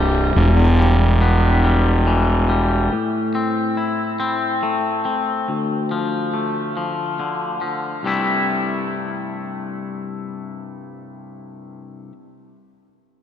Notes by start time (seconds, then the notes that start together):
Already playing: C1 C3 G3 A3
0.36 E1 E2
0.79 G3
1.21 B3
1.64 G3
2.07 E3
2.49 G3
2.92 A2
3.35 C4
3.77 E4
4.20 C4
4.63 A3
5.05 C4
5.48 D2
5.91 F3
6.34 A3
6.77 F3
7.19 D3
7.61 F3
8.03 C2 G2 C3 G3 A3
8.07 E4